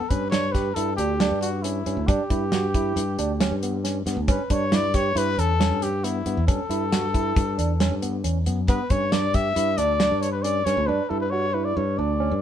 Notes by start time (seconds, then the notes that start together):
Already playing: A4
0.09 G2 C#4 B4, kick, closed hi-hat
0.30 D4 C#5, snare, closed hi-hat
0.52 G4 B4, kick, snare, closed hi-hat
0.74 G2 E4 A4, closed hi-hat
0.97 D2 D4 G4, closed hi-hat
1.20 D4, snare, closed hi-hat
1.31 G2
1.41 F#4, closed hi-hat
1.63 C#4 E4, closed hi-hat
1.86 G2 C#4, closed hi-hat
1.97 D2
2.07 G2 D4 G4, kick, closed hi-hat
2.30 G2 E4, kick, closed hi-hat
2.52 F#4, snare, closed hi-hat
2.74 E4, kick, closed hi-hat
2.96 G2, closed hi-hat
3.18 D2 D4, closed hi-hat
3.41 C#4, snare, closed hi-hat
3.51 G2
3.63 B3, closed hi-hat
3.84 C#4, snare, closed hi-hat
4.06 G2 B3, snare, closed hi-hat
4.17 D2
4.28 G2 C#4 B4, kick, closed hi-hat
4.50 G2 D4 C#5, kick, closed hi-hat
4.72 E4 D5, snare, closed hi-hat
4.94 G4 C#5, kick, snare, closed hi-hat
5.15 G2 E4 B4, closed hi-hat
5.38 E2 C#4 A4, closed hi-hat
5.60 C#4, snare, closed hi-hat
5.71 G2
5.82 G4, closed hi-hat
6.04 B3 E4, closed hi-hat
6.26 G2 B3, closed hi-hat
6.37 E2
6.47 G2 C#4 A4, kick, closed hi-hat
6.69 G2 E4, closed hi-hat
6.92 F#4, snare, closed hi-hat
7.14 E4, kick, closed hi-hat
7.36 G2, kick, closed hi-hat
7.58 E2 D4, closed hi-hat
7.80 C#4, snare, closed hi-hat
7.91 G2
8.02 B3, closed hi-hat
8.24 E2 C#4, closed hi-hat
8.46 F#2 B3, closed hi-hat
8.68 G2 B3 B4, kick, closed hi-hat
8.90 G2 C#4 C#5, kick, closed hi-hat
9.12 D4 D5, snare, closed hi-hat
9.34 G4 E5, kick, closed hi-hat
9.56 G2 E4, closed hi-hat
9.78 D2 D4 D5, closed hi-hat
10.00 D4, snare, closed hi-hat
10.11 G2
10.21 C#5, closed hi-hat
10.32 B4
10.43 C#4 D5, closed hi-hat
10.65 G2 C#4 C#5, snare, closed hi-hat
10.77 D2
10.87 G2 D4 B4
11.10 G2 E4 A4
11.21 B4
11.30 F#4 C#5
11.54 E4 B4
11.65 D5
11.76 G2 C#5
11.98 D2 D4 D5
12.20 C#4
12.31 G2